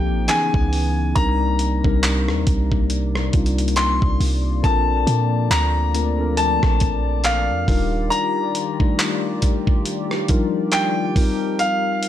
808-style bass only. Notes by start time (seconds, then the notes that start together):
Already playing: C2
0.11 A1
0.54 C#2
1.16 C2
1.84 C2
2.28 D#2
2.47 C2
3.34 C2
4.02 C2
4.20 C2
4.64 A#1
5.07 A#2
5.50 D2
6.63 A#1
7.50 F2
7.68 D#1